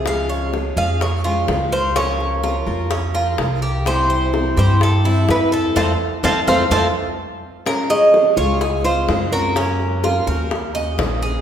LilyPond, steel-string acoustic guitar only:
\new Staff \with { instrumentName = "Steel-string acoustic guitar" } { \time 4/4 \key des \major \tempo 4 = 126 <des f aes des' f'>4 <f aes des' f'>8 <f aes des' f'>8 r8 <f aes des' f'>8 <f aes des' f'>4 | <des f bes f' bes'>4 <f bes f' bes'>8 <f bes f' bes'>8 r8 <f bes f' bes'>8 <f bes f' bes'>4 | <c e g c' e'>4 <e g c' e'>8 <e g c' e'>8 r8 <e g c' e'>8 <e g c' e'>4 | <f a c'>8 r8 <f a c'>8 <f a c'>8 <f a c'>8 r4. |
<f aes des' f'>4 <f aes des' f'>8 <aes des' f'>8 r8 <aes c' f'>8 <des f aes c' f'>8 <aes c' f'>8 | <des bes des' ges'>4 <f bes des' ges'>8 <f bes des' ges'>8 r8 <bes des' ges'>8 <ees bes des' ges'>8 <bes des' ges'>8 | }